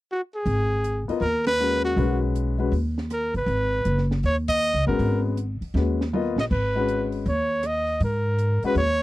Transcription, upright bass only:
0.46 1.04 G#1 medium
1.09 muted upright bass stroke soft
1.21 1.93 D#2 medium
1.97 2.69 B1 medium
2.72 3.31 D#2 medium
3.34 3.46 G1 medium
3.46 3.82 G#1 medium
3.85 4.21 F#1 medium
4.24 4.70 D#2 medium
4.74 4.86 C#2 medium
4.87 4.98 G1 medium
4.99 5.58 G#1 medium
5.61 muted upright bass stroke soft
5.74 6.33 D#2 medium
6.36 6.49 A#1 medium
6.51 7.22 G#1 medium
7.26 7.97 D#2 medium
8.00 8.59 G#2 medium
8.63 muted upright bass stroke soft
8.75 9.03 D#2 medium

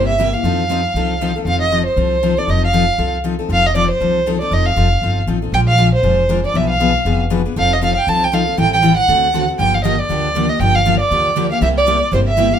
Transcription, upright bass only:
0.00 0.33 G1 medium
0.43 0.84 F2 medium
0.94 1.35 C2 medium
1.45 1.86 F1 medium
1.96 2.37 C2 medium
2.47 2.88 F1 medium
2.98 3.39 C2 medium
3.49 3.90 F1 medium
4.01 4.41 C2 medium
4.51 4.71 F1 medium
4.76 4.98 F1 medium
5.02 5.23 G1 medium
5.27 5.49 A1 medium
5.52 5.93 A#1 medium
6.03 6.44 F1 medium
6.54 6.95 B1 medium
7.05 7.46 F1 medium
7.56 7.97 F1 medium
8.07 8.47 C2 medium
8.58 8.98 A1 medium
9.08 9.49 D2 medium
9.59 9.99 G1 medium
10.10 10.50 D2 medium
10.60 11.00 G1 medium
11.11 11.51 D2 medium
11.61 12.02 C2 medium
12.12 12.52 G1 medium

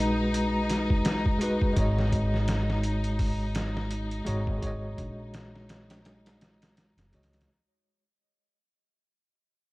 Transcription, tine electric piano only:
0.00 1.39 G#3 loud
0.00 1.41 F#4 medium
0.00 1.43 B4 loud
1.39 1.72 G#3 medium
1.39 1.73 F#4 medium
1.43 1.74 B4 medium
1.73 4.21 G#3 medium
1.73 4.23 F#4 medium
1.79 4.24 C#5 medium
1.79 4.25 D#5 medium
4.25 4.57 G#3 loud
4.25 4.59 F#4 medium
4.25 4.59 C#5 medium
4.29 4.60 D#5 loud
4.58 7.07 G#3 medium
4.58 7.08 F#4 medium
4.64 7.10 C#5 medium
4.64 7.11 D#5 loud
7.11 7.44 G#3 medium
7.11 7.45 F#4 medium
7.11 7.45 C#5 medium
7.15 7.46 D#5 medium

